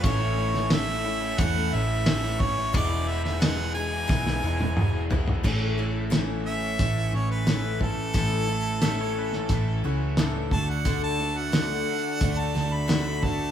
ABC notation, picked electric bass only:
X:1
M:4/4
L:1/8
Q:1/4=89
K:A
V:1 name="Picked electric bass" clef=bass
A,,,4 E,, A,,,3 | E,,,4 B,,, E,,,3 | A,,,4 A,,, A,,,3 | A,,,4 A,,, C,,2 D,,- |
D,,3 z D,, D,,3 |]